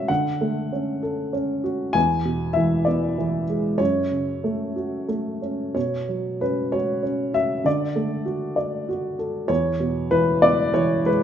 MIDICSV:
0, 0, Header, 1, 2, 480
1, 0, Start_track
1, 0, Tempo, 618557
1, 73, Time_signature, 6, 3, 24, 8
1, 2951, Tempo, 646552
1, 5351, Tempo, 619195
1, 8603, End_track
2, 0, Start_track
2, 0, Title_t, "Upright piano"
2, 0, Program_c, 0, 0
2, 0, Control_c, 0, 64, 127
2, 0, Note_on_c, 0, 47, 47
2, 0, Note_on_c, 0, 54, 41
2, 0, Note_on_c, 0, 61, 42
2, 0, Note_on_c, 0, 66, 42
2, 0, Note_on_c, 0, 71, 53
2, 0, Note_on_c, 0, 73, 65
2, 0, Note_on_c, 0, 76, 72
2, 65, Note_on_c, 0, 78, 75
2, 73, Note_on_c, 0, 50, 52
2, 80, Note_off_c, 0, 76, 0
2, 81, Note_off_c, 0, 54, 0
2, 81, Control_c, 0, 64, 0
2, 82, Note_off_c, 0, 71, 0
2, 83, Note_off_c, 0, 47, 0
2, 85, Note_off_c, 0, 73, 0
2, 87, Note_off_c, 0, 66, 0
2, 88, Note_off_c, 0, 61, 0
2, 194, Control_c, 0, 64, 127
2, 319, Note_on_c, 0, 57, 45
2, 562, Note_on_c, 0, 61, 41
2, 797, Note_on_c, 0, 69, 49
2, 1003, Note_off_c, 0, 78, 0
2, 1021, Note_off_c, 0, 61, 0
2, 1032, Note_on_c, 0, 61, 47
2, 1247, Note_off_c, 0, 57, 0
2, 1271, Note_on_c, 0, 66, 48
2, 1482, Note_off_c, 0, 50, 0
2, 1490, Note_off_c, 0, 69, 0
2, 1496, Note_off_c, 0, 61, 0
2, 1498, Note_on_c, 0, 80, 86
2, 1504, Note_off_c, 0, 66, 0
2, 1511, Note_on_c, 0, 40, 60
2, 1525, Control_c, 0, 64, 0
2, 1683, Control_c, 0, 64, 127
2, 1748, Note_on_c, 0, 47, 44
2, 1966, Note_on_c, 0, 76, 73
2, 1991, Note_on_c, 0, 52, 48
2, 1996, Note_off_c, 0, 80, 0
2, 2210, Note_on_c, 0, 74, 59
2, 2223, Note_off_c, 0, 76, 0
2, 2230, Note_on_c, 0, 59, 52
2, 2457, Note_off_c, 0, 52, 0
2, 2469, Note_on_c, 0, 52, 48
2, 2668, Note_off_c, 0, 74, 0
2, 2677, Note_off_c, 0, 47, 0
2, 2711, Note_on_c, 0, 56, 48
2, 2918, Note_off_c, 0, 40, 0
2, 2930, Note_off_c, 0, 59, 0
2, 2933, Note_on_c, 0, 73, 79
2, 2937, Note_off_c, 0, 52, 0
2, 2945, Note_off_c, 0, 56, 0
2, 2955, Note_on_c, 0, 42, 55
2, 2959, Control_c, 0, 64, 0
2, 3107, Control_c, 0, 64, 127
2, 3181, Note_on_c, 0, 49, 40
2, 3424, Note_on_c, 0, 57, 41
2, 3661, Note_on_c, 0, 66, 46
2, 3869, Note_off_c, 0, 73, 0
2, 3891, Note_off_c, 0, 57, 0
2, 3902, Note_on_c, 0, 57, 39
2, 4121, Note_off_c, 0, 49, 0
2, 4153, Note_on_c, 0, 61, 38
2, 4372, Note_off_c, 0, 42, 0
2, 4376, Note_off_c, 0, 66, 0
2, 4382, Note_off_c, 0, 57, 0
2, 4392, Note_off_c, 0, 61, 0
2, 4393, Note_on_c, 0, 73, 59
2, 4403, Note_on_c, 0, 47, 47
2, 4410, Control_c, 0, 64, 0
2, 4522, Control_c, 0, 64, 127
2, 4647, Note_on_c, 0, 54, 40
2, 4888, Note_on_c, 0, 61, 41
2, 4888, Note_on_c, 0, 71, 56
2, 4897, Note_off_c, 0, 73, 0
2, 5114, Note_on_c, 0, 66, 44
2, 5118, Note_on_c, 0, 73, 67
2, 5129, Note_off_c, 0, 71, 0
2, 5334, Note_off_c, 0, 61, 0
2, 5346, Note_on_c, 0, 61, 44
2, 5565, Note_off_c, 0, 54, 0
2, 5572, Note_off_c, 0, 66, 0
2, 5583, Note_on_c, 0, 66, 43
2, 5589, Note_on_c, 0, 76, 74
2, 5606, Note_off_c, 0, 73, 0
2, 5803, Note_off_c, 0, 47, 0
2, 5815, Note_off_c, 0, 61, 0
2, 5821, Note_off_c, 0, 66, 0
2, 5822, Note_on_c, 0, 50, 52
2, 5834, Note_on_c, 0, 74, 67
2, 5838, Note_off_c, 0, 76, 0
2, 5843, Control_c, 0, 64, 0
2, 5966, Control_c, 0, 64, 127
2, 6065, Note_on_c, 0, 57, 44
2, 6296, Note_on_c, 0, 66, 44
2, 6522, Note_off_c, 0, 74, 0
2, 6534, Note_on_c, 0, 74, 51
2, 6774, Note_off_c, 0, 66, 0
2, 6786, Note_on_c, 0, 66, 49
2, 6993, Note_off_c, 0, 57, 0
2, 7021, Note_on_c, 0, 69, 47
2, 7224, Note_off_c, 0, 50, 0
2, 7231, Note_off_c, 0, 74, 0
2, 7245, Note_off_c, 0, 66, 0
2, 7247, Note_on_c, 0, 73, 78
2, 7251, Note_off_c, 0, 69, 0
2, 7256, Note_on_c, 0, 40, 56
2, 7270, Control_c, 0, 64, 0
2, 7420, Control_c, 0, 64, 127
2, 7493, Note_on_c, 0, 47, 47
2, 7734, Note_on_c, 0, 71, 80
2, 7738, Note_on_c, 0, 52, 50
2, 7743, Note_off_c, 0, 73, 0
2, 7975, Note_on_c, 0, 59, 52
2, 7975, Note_on_c, 0, 74, 92
2, 7983, Note_off_c, 0, 71, 0
2, 8203, Note_off_c, 0, 74, 0
2, 8210, Note_off_c, 0, 52, 0
2, 8221, Note_on_c, 0, 73, 81
2, 8222, Note_on_c, 0, 52, 51
2, 8437, Note_off_c, 0, 47, 0
2, 8467, Note_on_c, 0, 56, 50
2, 8473, Note_on_c, 0, 71, 77
2, 8475, Note_off_c, 0, 73, 0
2, 8603, Note_off_c, 0, 40, 0
2, 8603, Note_off_c, 0, 52, 0
2, 8603, Note_off_c, 0, 56, 0
2, 8603, Note_off_c, 0, 59, 0
2, 8603, Note_off_c, 0, 71, 0
2, 8603, End_track
0, 0, End_of_file